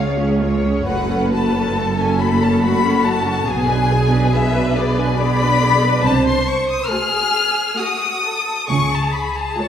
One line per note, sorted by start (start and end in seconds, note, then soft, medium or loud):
0.00 0.82 C#2 medium
0.00 0.18 G#3 soft
0.00 0.19 F4 medium
0.00 0.41 C#5 medium
0.20 0.42 C#4 soft
0.20 0.42 G#4 medium
0.41 0.63 G#3 soft
0.41 0.64 F4 soft
0.41 0.85 C#5 medium
0.64 0.86 C#4 soft
0.64 0.86 G#4 soft
0.85 3.47 F#1 medium
0.85 3.47 F#2 medium
0.85 1.06 A3 soft
0.85 1.06 F#4 medium
0.85 1.75 B4 medium
0.85 1.27 F#5 medium
1.07 1.30 C#4 soft
1.07 1.30 A4 soft
1.29 1.52 A3 soft
1.29 1.52 F#4 soft
1.29 1.97 A5 medium
1.52 1.75 C#4 soft
1.52 1.75 A4 soft
1.74 1.96 A3 soft
1.74 1.96 F#4 soft
1.74 2.62 A4 medium
1.96 2.19 C#4 soft
1.96 2.19 A4 soft
1.96 2.20 G#5 medium
2.19 2.41 A3 soft
2.19 2.41 F#4 soft
2.19 2.41 B5 medium
2.41 2.63 C#4 medium
2.41 2.62 A4 soft
2.41 2.63 A5 medium
2.62 2.82 A3 medium
2.62 3.47 F#4 medium
2.62 2.82 F#4 medium
2.62 3.04 B5 medium
2.84 3.05 C#4 medium
2.84 3.05 A4 medium
3.05 3.26 A3 soft
3.05 3.26 F#4 soft
3.05 3.47 A5 medium
3.26 3.47 C#4 medium
3.26 3.47 A4 medium
3.46 6.01 B1 medium
3.46 6.01 B2 medium
3.46 3.67 B3 medium
3.46 4.31 G#4 medium
3.46 3.67 G#4 medium
3.46 4.33 G#5 medium
3.68 3.90 D4 soft
3.68 3.90 B4 soft
3.89 4.11 B3 soft
3.89 4.11 G#4 soft
4.11 4.32 D4 medium
4.11 4.32 B4 medium
4.32 4.53 B3 medium
4.32 4.53 G#4 soft
4.32 5.18 B4 medium
4.32 4.76 E5 medium
4.54 4.76 D4 soft
4.54 4.76 B4 soft
4.75 4.97 B3 soft
4.75 4.97 G#4 medium
4.75 4.97 D5 medium
4.98 5.19 D4 medium
4.98 5.19 B4 medium
4.98 5.19 G#5 medium
5.17 5.38 B3 medium
5.17 5.38 G#4 medium
5.17 6.04 D5 medium
5.17 6.05 B5 loud
5.40 5.62 D4 medium
5.40 5.62 B4 medium
5.62 5.83 B3 soft
5.62 5.83 G#4 soft
5.83 6.05 D4 medium
5.83 6.05 B4 medium
6.04 6.74 C2 medium
6.04 6.74 C3 medium
6.04 6.89 C5 medium
6.04 6.26 A5 medium
6.27 6.48 C6 medium
6.48 6.70 C#6 medium
6.69 6.91 D#6 medium
6.91 7.58 A3 medium
6.91 7.57 F#4 medium
6.91 7.80 G#4 medium
6.91 7.79 F6 loud
7.78 8.48 A3 medium
7.78 8.24 F#4 medium
7.78 8.48 F#4 medium
7.78 8.69 D#6 medium
8.26 8.71 A4 medium
8.69 9.42 C#2 medium
8.69 9.42 C#3 medium
8.69 9.58 G#4 medium
8.69 8.91 C#6 medium
8.92 9.15 A5 medium
9.14 9.37 B5 medium
9.36 9.68 A5 medium
9.60 9.68 G#3 medium
9.60 9.68 F4 medium
9.60 9.68 C#5 medium